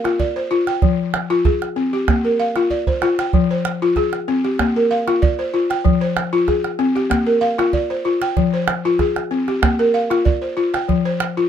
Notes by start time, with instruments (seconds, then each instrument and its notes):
Already playing: balafon A#4 F5
0.04 balafon F4, calabash click
0.19 balafon D5, calabash thump
0.36 balafon C5
0.51 balafon F4
0.67 balafon G5, calabash click
0.82 balafon F3, calabash thump
1.14 calabash click
1.30 balafon F4, calabash click
1.45 balafon G#4, calabash thump
1.62 calabash click
1.76 balafon C4
1.93 balafon G4
2.08 balafon A#3, calabash thump, calabash click
2.25 balafon A#4
2.40 balafon F5
2.56 balafon F4, calabash click
2.70 balafon D5, calabash thump
2.87 balafon C5, calabash thump
3.02 balafon F4, calabash click
3.19 balafon G5, calabash click
3.33 balafon F3, calabash thump
3.51 balafon C5
3.65 calabash click
3.82 balafon F4
3.96 balafon G#4, calabash thump, calabash click
4.13 calabash click
4.28 balafon C4
4.44 balafon G4, calabash click
4.59 balafon A#3, calabash thump, calabash click
4.76 balafon A#4
4.91 balafon F5
5.07 balafon F4, calabash click
5.22 balafon D5, calabash thump
5.39 balafon C5
5.54 balafon F4
5.70 balafon G5, calabash click
5.85 balafon F3, calabash thump
6.01 balafon C5
6.17 calabash click
6.33 balafon F4
6.48 balafon G#4, calabash thump, calabash click
6.64 calabash click
6.79 balafon C4
6.96 balafon G4, calabash click
7.10 balafon A#3, calabash thump, calabash click
7.26 balafon A#4
7.41 balafon F5
7.58 balafon F4, calabash click
7.73 balafon D5, calabash thump
7.90 balafon C5
8.05 balafon F4
8.22 balafon G5, calabash click
8.37 balafon F3, calabash thump
8.53 balafon C5
8.68 calabash click
8.85 balafon F4
8.99 balafon G#4, calabash thump, calabash click
9.16 calabash click
9.31 balafon C4
9.48 balafon G4, calabash click
9.62 balafon A#3, calabash thump, calabash click
9.79 balafon A#4
9.94 balafon F5
10.10 balafon F4, calabash click
10.25 balafon D5, calabash thump
10.42 balafon C5
10.57 balafon F4
10.74 balafon G5, calabash click
10.88 balafon F3, calabash thump
11.05 balafon C5
11.20 calabash click
11.37 balafon F4